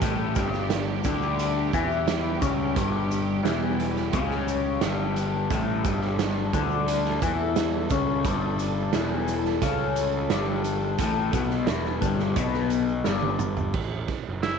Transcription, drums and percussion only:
0.01 kick loud
0.01 closed hi-hat loud
0.01 shaker medium
0.35 kick loud
0.35 snare soft
0.35 closed hi-hat medium
0.35 shaker loud
0.53 snare soft
0.53 shaker soft
0.70 snare loud
0.70 closed hi-hat medium
0.70 shaker medium
1.04 kick medium
1.04 closed hi-hat medium
1.04 shaker medium
1.22 shaker soft
1.39 closed hi-hat medium
1.39 shaker medium
1.73 kick medium
1.73 closed hi-hat medium
1.73 shaker medium
1.92 shaker soft
2.08 snare loud
2.08 closed hi-hat medium
2.08 shaker medium
2.42 kick loud
2.42 closed hi-hat medium
2.42 shaker medium
2.76 kick loud
2.76 closed hi-hat medium
2.76 shaker medium
3.11 closed hi-hat medium
3.11 shaker medium
3.45 snare loud
3.45 closed hi-hat medium
3.45 shaker medium
3.80 closed hi-hat medium
3.96 snare soft
3.96 shaker soft
4.13 kick loud
4.13 closed hi-hat medium
4.13 shaker medium
4.31 snare soft
4.48 closed hi-hat medium
4.48 shaker medium
4.81 snare loud
4.81 closed hi-hat loud
4.81 shaker medium
5.16 closed hi-hat medium
5.16 shaker medium
5.50 kick medium
5.50 closed hi-hat medium
5.50 shaker medium
5.84 kick loud
5.84 closed hi-hat medium
5.84 shaker medium
6.01 snare soft
6.19 snare medium
6.19 closed hi-hat medium
6.19 shaker medium
6.53 kick loud
6.53 closed hi-hat medium
6.53 shaker medium
6.71 shaker soft
6.88 closed hi-hat loud
6.88 shaker medium
7.05 snare soft
7.22 kick medium
7.22 closed hi-hat medium
7.22 shaker medium
7.56 snare loud
7.56 closed hi-hat medium
7.56 shaker medium
7.90 kick loud
7.90 closed hi-hat medium
7.90 shaker medium
8.24 kick loud
8.24 closed hi-hat medium
8.24 shaker medium
8.59 closed hi-hat medium
8.59 shaker medium
8.93 snare medium
8.93 closed hi-hat medium
8.93 shaker medium
9.28 closed hi-hat medium
9.28 shaker medium
9.45 snare soft
9.45 shaker soft
9.62 kick loud
9.62 closed hi-hat medium
9.62 shaker medium
9.96 closed hi-hat medium
9.96 shaker medium
10.30 snare loud
10.30 closed hi-hat medium
10.30 shaker medium
10.64 closed hi-hat medium
10.64 shaker medium
10.98 kick loud
10.98 closed hi-hat loud
10.98 shaker medium
11.33 kick loud
11.33 closed hi-hat medium
11.33 shaker medium
11.50 snare soft
11.50 shaker soft
11.67 snare medium
11.67 closed hi-hat medium
11.67 shaker medium
11.85 snare soft
12.02 kick loud
12.02 closed hi-hat medium
12.02 shaker medium
12.19 snare soft
12.19 shaker soft
12.36 kick loud
12.36 closed hi-hat medium
12.36 shaker medium
12.54 snare soft
12.70 closed hi-hat medium
12.70 shaker medium
12.89 shaker soft
13.04 snare medium
13.04 shaker medium
13.22 high tom medium
13.39 mid tom medium
13.39 shaker loud
13.57 floor tom medium
13.57 shaker soft
13.74 kick loud
13.74 crash medium
14.08 kick medium
14.08 snare soft
14.08 ride medium
14.43 snare loud
14.43 ride medium

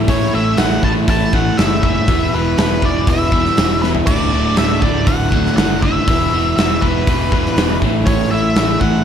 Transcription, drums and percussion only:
0.08 kick loud
0.08 open hi-hat medium
0.57 snare loud
0.57 open hi-hat medium
0.83 kick medium
1.08 kick loud
1.08 open hi-hat medium
1.33 kick medium
1.58 snare loud
1.58 open hi-hat medium
1.83 kick medium
2.08 kick loud
2.08 open hi-hat medium
2.58 snare loud
2.58 open hi-hat medium
2.82 kick medium
3.07 kick loud
3.07 open hi-hat medium
3.32 kick medium
3.45 snare soft
3.57 snare loud
3.57 open hi-hat medium
3.83 snare medium
3.95 floor tom medium
4.07 kick loud
4.07 crash loud
4.56 snare loud
4.56 open hi-hat medium
4.82 kick medium
5.07 kick loud
5.07 open hi-hat medium
5.32 kick medium
5.46 snare soft
5.57 snare loud
5.57 open hi-hat medium
5.82 kick medium
6.08 kick loud
6.08 open hi-hat medium
6.58 snare loud
6.58 open hi-hat medium
6.82 kick medium
7.07 kick loud
7.07 open hi-hat medium
7.32 kick medium
7.46 snare soft
7.57 snare loud
7.57 open hi-hat medium
7.82 kick medium
8.07 kick loud
8.07 open hi-hat medium
8.56 snare loud
8.56 open hi-hat medium
8.81 kick medium

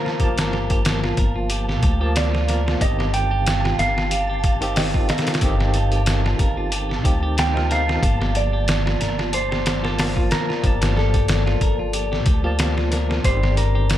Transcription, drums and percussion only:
0.06 snare soft
0.20 kick medium
0.20 closed hi-hat medium
0.38 snare loud
0.38 closed hi-hat medium
0.53 snare soft
0.70 kick medium
0.70 closed hi-hat medium
0.85 snare loud
0.85 closed hi-hat medium
1.04 snare soft
1.17 kick medium
1.17 closed hi-hat medium
1.50 closed hi-hat medium
1.69 snare soft
1.83 kick loud
1.83 closed hi-hat medium
2.16 snare loud
2.16 closed hi-hat medium
2.35 snare soft
2.49 snare soft
2.49 closed hi-hat medium
2.68 snare medium
2.81 kick loud
2.81 closed hi-hat medium
3.00 snare soft
3.14 closed hi-hat medium
3.47 snare loud
3.47 closed hi-hat medium
3.65 snare medium
3.79 snare soft
3.79 closed hi-hat medium
3.98 snare soft
4.11 closed hi-hat medium
4.44 kick loud
4.44 closed hi-hat medium
4.62 closed hi-hat soft
4.76 snare loud
4.76 open hi-hat medium
4.94 kick medium
5.09 snare medium
5.09 closed hi-hat medium
5.18 snare medium
5.18 closed hi-hat medium
5.27 snare medium
5.27 closed hi-hat medium
5.34 snare medium
5.34 closed hi-hat medium
5.41 kick loud
5.41 closed hi-hat medium
5.61 snare soft
5.74 closed hi-hat medium
5.92 closed hi-hat soft
6.06 snare loud
6.06 closed hi-hat loud
6.26 snare soft
6.39 kick loud
6.39 closed hi-hat medium
6.72 closed hi-hat medium
6.91 snare soft
7.05 kick medium
7.05 closed hi-hat medium
7.38 snare loud
7.38 closed hi-hat medium
7.57 snare soft
7.71 snare soft
7.71 closed hi-hat medium
7.89 snare medium
8.03 kick loud
8.03 closed hi-hat medium
8.22 snare soft
8.35 closed hi-hat medium
8.68 snare loud
8.68 closed hi-hat medium
8.87 snare medium
9.01 snare soft
9.01 closed hi-hat medium
9.19 snare medium
9.33 closed hi-hat medium
9.52 snare medium
9.66 snare loud
9.66 closed hi-hat medium
9.85 snare soft
9.99 snare loud
9.99 open hi-hat medium
10.16 kick medium
10.31 snare loud
10.31 closed hi-hat medium
10.50 snare soft
10.64 kick medium
10.64 closed hi-hat medium
10.82 snare loud
10.82 closed hi-hat medium
10.97 snare soft
11.14 kick medium
11.14 closed hi-hat medium
11.28 snare loud
11.28 closed hi-hat medium
11.47 snare soft
11.61 kick loud
11.61 closed hi-hat medium
11.93 closed hi-hat medium
12.13 snare soft
12.26 kick loud
12.26 closed hi-hat medium
12.59 snare loud
12.59 closed hi-hat medium
12.78 snare soft
12.92 snare soft
12.92 closed hi-hat medium
13.11 snare medium
13.24 kick loud
13.24 closed hi-hat medium
13.44 snare soft
13.57 closed hi-hat medium
13.90 snare loud
13.90 closed hi-hat medium

